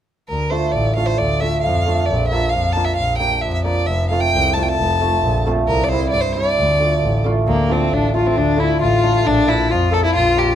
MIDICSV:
0, 0, Header, 1, 5, 480
1, 0, Start_track
1, 0, Key_signature, -1, "minor"
1, 0, Tempo, 448096
1, 310, Time_signature, 2, 2, 24, 8
1, 11301, End_track
2, 0, Start_track
2, 0, Title_t, "Violin"
2, 0, Program_c, 0, 40
2, 310, Note_on_c, 0, 70, 74
2, 541, Note_on_c, 0, 72, 68
2, 557, Note_off_c, 0, 70, 0
2, 773, Note_on_c, 0, 74, 78
2, 789, Note_off_c, 0, 72, 0
2, 1021, Note_off_c, 0, 74, 0
2, 1027, Note_on_c, 0, 77, 71
2, 1135, Note_on_c, 0, 72, 73
2, 1152, Note_off_c, 0, 77, 0
2, 1264, Note_on_c, 0, 74, 78
2, 1280, Note_off_c, 0, 72, 0
2, 1501, Note_on_c, 0, 76, 88
2, 1517, Note_off_c, 0, 74, 0
2, 1723, Note_off_c, 0, 76, 0
2, 1730, Note_on_c, 0, 77, 79
2, 2204, Note_on_c, 0, 74, 79
2, 2220, Note_off_c, 0, 77, 0
2, 2436, Note_off_c, 0, 74, 0
2, 2442, Note_on_c, 0, 76, 84
2, 2673, Note_on_c, 0, 77, 82
2, 2689, Note_off_c, 0, 76, 0
2, 2921, Note_on_c, 0, 81, 89
2, 2938, Note_off_c, 0, 77, 0
2, 3048, Note_on_c, 0, 76, 88
2, 3064, Note_off_c, 0, 81, 0
2, 3166, Note_off_c, 0, 76, 0
2, 3172, Note_on_c, 0, 77, 90
2, 3401, Note_off_c, 0, 77, 0
2, 3408, Note_on_c, 0, 79, 83
2, 3658, Note_on_c, 0, 76, 79
2, 3674, Note_off_c, 0, 79, 0
2, 3783, Note_off_c, 0, 76, 0
2, 3789, Note_on_c, 0, 76, 66
2, 3901, Note_off_c, 0, 76, 0
2, 3908, Note_on_c, 0, 74, 80
2, 4138, Note_on_c, 0, 76, 76
2, 4155, Note_off_c, 0, 74, 0
2, 4380, Note_off_c, 0, 76, 0
2, 4386, Note_on_c, 0, 77, 80
2, 4504, Note_on_c, 0, 79, 100
2, 4520, Note_off_c, 0, 77, 0
2, 4857, Note_on_c, 0, 81, 72
2, 4873, Note_off_c, 0, 79, 0
2, 4958, Note_on_c, 0, 79, 62
2, 4974, Note_off_c, 0, 81, 0
2, 5019, Note_on_c, 0, 81, 90
2, 5035, Note_off_c, 0, 79, 0
2, 5838, Note_off_c, 0, 81, 0
2, 6081, Note_on_c, 0, 70, 91
2, 6257, Note_on_c, 0, 74, 59
2, 6273, Note_off_c, 0, 70, 0
2, 6311, Note_on_c, 0, 72, 82
2, 6327, Note_off_c, 0, 74, 0
2, 6526, Note_off_c, 0, 72, 0
2, 6532, Note_on_c, 0, 74, 95
2, 6653, Note_on_c, 0, 72, 78
2, 6669, Note_off_c, 0, 74, 0
2, 6775, Note_on_c, 0, 74, 92
2, 6792, Note_off_c, 0, 72, 0
2, 7749, Note_off_c, 0, 74, 0
2, 8014, Note_on_c, 0, 58, 81
2, 8266, Note_on_c, 0, 60, 74
2, 8282, Note_off_c, 0, 58, 0
2, 8501, Note_on_c, 0, 62, 84
2, 8517, Note_off_c, 0, 60, 0
2, 8731, Note_off_c, 0, 62, 0
2, 8744, Note_on_c, 0, 65, 74
2, 8860, Note_on_c, 0, 60, 78
2, 8876, Note_off_c, 0, 65, 0
2, 8981, Note_on_c, 0, 62, 86
2, 8997, Note_off_c, 0, 60, 0
2, 9216, Note_on_c, 0, 64, 82
2, 9232, Note_off_c, 0, 62, 0
2, 9435, Note_off_c, 0, 64, 0
2, 9442, Note_on_c, 0, 65, 92
2, 9932, Note_on_c, 0, 62, 107
2, 9948, Note_off_c, 0, 65, 0
2, 10156, Note_on_c, 0, 64, 92
2, 10172, Note_off_c, 0, 62, 0
2, 10408, Note_on_c, 0, 65, 84
2, 10424, Note_off_c, 0, 64, 0
2, 10643, Note_on_c, 0, 69, 93
2, 10659, Note_off_c, 0, 65, 0
2, 10752, Note_off_c, 0, 69, 0
2, 10759, Note_on_c, 0, 64, 99
2, 10865, Note_off_c, 0, 64, 0
2, 10877, Note_on_c, 0, 65, 101
2, 11123, Note_on_c, 0, 67, 90
2, 11139, Note_off_c, 0, 65, 0
2, 11301, Note_off_c, 0, 67, 0
2, 11301, End_track
3, 0, Start_track
3, 0, Title_t, "Clarinet"
3, 0, Program_c, 1, 71
3, 8006, Note_on_c, 1, 58, 69
3, 8450, Note_off_c, 1, 58, 0
3, 8477, Note_on_c, 1, 62, 68
3, 8724, Note_on_c, 1, 65, 72
3, 8740, Note_off_c, 1, 62, 0
3, 8964, Note_on_c, 1, 62, 81
3, 8980, Note_off_c, 1, 65, 0
3, 9208, Note_on_c, 1, 64, 72
3, 9224, Note_off_c, 1, 62, 0
3, 9427, Note_off_c, 1, 64, 0
3, 9433, Note_on_c, 1, 65, 82
3, 9915, Note_on_c, 1, 62, 85
3, 9931, Note_off_c, 1, 65, 0
3, 10389, Note_on_c, 1, 65, 86
3, 10406, Note_off_c, 1, 62, 0
3, 10615, Note_off_c, 1, 65, 0
3, 10622, Note_on_c, 1, 69, 86
3, 10752, Note_on_c, 1, 64, 78
3, 10768, Note_off_c, 1, 69, 0
3, 10873, Note_on_c, 1, 65, 84
3, 10889, Note_off_c, 1, 64, 0
3, 11301, Note_off_c, 1, 65, 0
3, 11301, End_track
4, 0, Start_track
4, 0, Title_t, "Hammered dulcimer"
4, 0, Program_c, 2, 15
4, 543, Note_on_c, 2, 57, 58
4, 548, Note_on_c, 2, 62, 52
4, 556, Note_on_c, 2, 65, 64
4, 667, Note_off_c, 2, 57, 0
4, 670, Note_off_c, 2, 62, 0
4, 674, Note_off_c, 2, 65, 0
4, 1028, Note_on_c, 2, 57, 58
4, 1036, Note_on_c, 2, 62, 48
4, 1039, Note_on_c, 2, 65, 70
4, 1151, Note_off_c, 2, 57, 0
4, 1155, Note_off_c, 2, 62, 0
4, 1156, Note_off_c, 2, 65, 0
4, 1508, Note_on_c, 2, 57, 56
4, 1519, Note_on_c, 2, 62, 59
4, 1526, Note_on_c, 2, 65, 56
4, 1632, Note_off_c, 2, 57, 0
4, 1637, Note_off_c, 2, 62, 0
4, 1641, Note_off_c, 2, 65, 0
4, 1992, Note_on_c, 2, 57, 58
4, 2001, Note_on_c, 2, 62, 46
4, 2007, Note_on_c, 2, 65, 61
4, 2115, Note_off_c, 2, 57, 0
4, 2119, Note_off_c, 2, 62, 0
4, 2122, Note_off_c, 2, 65, 0
4, 2479, Note_on_c, 2, 58, 58
4, 2484, Note_on_c, 2, 62, 61
4, 2497, Note_on_c, 2, 65, 63
4, 2599, Note_off_c, 2, 58, 0
4, 2602, Note_off_c, 2, 62, 0
4, 2608, Note_off_c, 2, 65, 0
4, 2956, Note_on_c, 2, 58, 58
4, 2962, Note_on_c, 2, 62, 47
4, 2967, Note_on_c, 2, 65, 68
4, 3079, Note_off_c, 2, 58, 0
4, 3082, Note_off_c, 2, 62, 0
4, 3084, Note_off_c, 2, 65, 0
4, 3422, Note_on_c, 2, 58, 54
4, 3428, Note_on_c, 2, 62, 50
4, 3443, Note_on_c, 2, 67, 70
4, 3552, Note_off_c, 2, 58, 0
4, 3555, Note_off_c, 2, 62, 0
4, 3563, Note_off_c, 2, 67, 0
4, 3907, Note_on_c, 2, 58, 61
4, 3917, Note_on_c, 2, 62, 47
4, 3928, Note_on_c, 2, 65, 52
4, 4036, Note_off_c, 2, 58, 0
4, 4041, Note_off_c, 2, 62, 0
4, 4046, Note_off_c, 2, 65, 0
4, 4396, Note_on_c, 2, 57, 56
4, 4406, Note_on_c, 2, 60, 54
4, 4416, Note_on_c, 2, 65, 65
4, 4521, Note_off_c, 2, 57, 0
4, 4526, Note_off_c, 2, 60, 0
4, 4531, Note_off_c, 2, 65, 0
4, 4874, Note_on_c, 2, 57, 56
4, 4882, Note_on_c, 2, 60, 56
4, 4894, Note_on_c, 2, 65, 64
4, 5000, Note_off_c, 2, 57, 0
4, 5004, Note_off_c, 2, 60, 0
4, 5010, Note_off_c, 2, 65, 0
4, 5365, Note_on_c, 2, 57, 63
4, 5373, Note_on_c, 2, 60, 54
4, 5385, Note_on_c, 2, 65, 61
4, 5486, Note_off_c, 2, 57, 0
4, 5490, Note_off_c, 2, 60, 0
4, 5496, Note_off_c, 2, 65, 0
4, 5846, Note_on_c, 2, 57, 70
4, 5856, Note_on_c, 2, 60, 62
4, 5861, Note_on_c, 2, 65, 83
4, 5967, Note_off_c, 2, 57, 0
4, 5972, Note_off_c, 2, 60, 0
4, 5974, Note_off_c, 2, 65, 0
4, 6336, Note_on_c, 2, 55, 57
4, 6343, Note_on_c, 2, 60, 50
4, 6352, Note_on_c, 2, 64, 69
4, 6455, Note_off_c, 2, 60, 0
4, 6459, Note_off_c, 2, 64, 0
4, 6797, Note_off_c, 2, 55, 0
4, 6810, Note_on_c, 2, 55, 55
4, 6814, Note_on_c, 2, 60, 45
4, 6825, Note_on_c, 2, 64, 66
4, 6930, Note_off_c, 2, 60, 0
4, 6936, Note_off_c, 2, 64, 0
4, 7100, Note_off_c, 2, 55, 0
4, 7278, Note_on_c, 2, 57, 57
4, 7284, Note_on_c, 2, 62, 48
4, 7295, Note_on_c, 2, 65, 61
4, 7402, Note_off_c, 2, 57, 0
4, 7405, Note_off_c, 2, 62, 0
4, 7410, Note_off_c, 2, 65, 0
4, 7757, Note_on_c, 2, 57, 72
4, 7765, Note_on_c, 2, 62, 59
4, 7777, Note_on_c, 2, 65, 77
4, 7881, Note_off_c, 2, 57, 0
4, 7885, Note_off_c, 2, 62, 0
4, 7891, Note_off_c, 2, 65, 0
4, 8232, Note_on_c, 2, 57, 59
4, 8243, Note_on_c, 2, 62, 50
4, 8244, Note_on_c, 2, 65, 59
4, 8357, Note_off_c, 2, 57, 0
4, 8363, Note_off_c, 2, 62, 0
4, 8363, Note_off_c, 2, 65, 0
4, 8717, Note_on_c, 2, 57, 58
4, 8725, Note_on_c, 2, 62, 53
4, 8729, Note_on_c, 2, 65, 61
4, 8839, Note_off_c, 2, 57, 0
4, 8843, Note_off_c, 2, 62, 0
4, 8845, Note_off_c, 2, 65, 0
4, 9174, Note_on_c, 2, 57, 58
4, 9184, Note_on_c, 2, 62, 62
4, 9192, Note_on_c, 2, 65, 63
4, 9306, Note_off_c, 2, 57, 0
4, 9311, Note_off_c, 2, 62, 0
4, 9315, Note_off_c, 2, 65, 0
4, 9673, Note_on_c, 2, 57, 56
4, 9679, Note_on_c, 2, 62, 60
4, 9690, Note_on_c, 2, 65, 58
4, 9794, Note_off_c, 2, 57, 0
4, 9797, Note_off_c, 2, 62, 0
4, 9803, Note_off_c, 2, 65, 0
4, 10140, Note_on_c, 2, 58, 54
4, 10150, Note_on_c, 2, 62, 62
4, 10154, Note_on_c, 2, 65, 67
4, 10266, Note_off_c, 2, 58, 0
4, 10271, Note_off_c, 2, 62, 0
4, 10273, Note_off_c, 2, 65, 0
4, 10621, Note_on_c, 2, 58, 62
4, 10629, Note_on_c, 2, 62, 61
4, 10635, Note_on_c, 2, 65, 66
4, 10744, Note_off_c, 2, 58, 0
4, 10748, Note_off_c, 2, 62, 0
4, 10752, Note_off_c, 2, 65, 0
4, 11101, Note_on_c, 2, 58, 60
4, 11106, Note_on_c, 2, 62, 62
4, 11115, Note_on_c, 2, 65, 71
4, 11223, Note_off_c, 2, 58, 0
4, 11225, Note_off_c, 2, 62, 0
4, 11229, Note_off_c, 2, 65, 0
4, 11301, End_track
5, 0, Start_track
5, 0, Title_t, "Double bass"
5, 0, Program_c, 3, 43
5, 317, Note_on_c, 3, 38, 83
5, 604, Note_off_c, 3, 38, 0
5, 795, Note_on_c, 3, 33, 96
5, 1084, Note_off_c, 3, 33, 0
5, 1278, Note_on_c, 3, 38, 93
5, 1566, Note_off_c, 3, 38, 0
5, 1760, Note_on_c, 3, 41, 102
5, 2048, Note_off_c, 3, 41, 0
5, 2238, Note_on_c, 3, 34, 107
5, 2527, Note_off_c, 3, 34, 0
5, 2713, Note_on_c, 3, 41, 91
5, 3004, Note_off_c, 3, 41, 0
5, 3193, Note_on_c, 3, 34, 90
5, 3485, Note_off_c, 3, 34, 0
5, 3681, Note_on_c, 3, 41, 96
5, 3971, Note_off_c, 3, 41, 0
5, 4150, Note_on_c, 3, 29, 95
5, 4443, Note_off_c, 3, 29, 0
5, 4643, Note_on_c, 3, 36, 100
5, 4932, Note_off_c, 3, 36, 0
5, 5127, Note_on_c, 3, 29, 101
5, 5415, Note_off_c, 3, 29, 0
5, 5605, Note_on_c, 3, 34, 102
5, 5894, Note_off_c, 3, 34, 0
5, 6085, Note_on_c, 3, 36, 98
5, 6374, Note_off_c, 3, 36, 0
5, 6562, Note_on_c, 3, 43, 82
5, 6851, Note_off_c, 3, 43, 0
5, 7052, Note_on_c, 3, 38, 107
5, 7338, Note_off_c, 3, 38, 0
5, 7520, Note_on_c, 3, 33, 99
5, 7809, Note_off_c, 3, 33, 0
5, 7997, Note_on_c, 3, 38, 111
5, 8286, Note_off_c, 3, 38, 0
5, 8472, Note_on_c, 3, 33, 94
5, 8762, Note_off_c, 3, 33, 0
5, 8954, Note_on_c, 3, 38, 98
5, 9242, Note_off_c, 3, 38, 0
5, 9434, Note_on_c, 3, 33, 100
5, 9722, Note_off_c, 3, 33, 0
5, 9908, Note_on_c, 3, 34, 100
5, 10196, Note_off_c, 3, 34, 0
5, 10392, Note_on_c, 3, 41, 106
5, 10678, Note_off_c, 3, 41, 0
5, 10879, Note_on_c, 3, 34, 95
5, 11161, Note_off_c, 3, 34, 0
5, 11301, End_track
0, 0, End_of_file